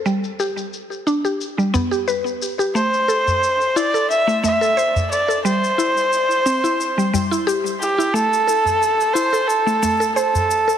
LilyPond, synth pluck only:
\new Staff \with { instrumentName = "Synth pluck" } { \time 4/4 \key c \major \tempo 4 = 89 g16 r16 g'16 r8. d'16 g'16 r16 g16 b16 g'16 b'16 r8 g'16 | a16 r16 a'16 r8. e'16 a'16 r16 a16 a16 a'16 c''16 r8 a'16 | g16 r16 e'16 r8. c'16 e'16 r16 g16 g16 e'16 g'16 r8 e'16 | a16 r16 a'16 r8. e'16 a'16 r16 a16 a16 a'16 c''16 r8 a'16 | }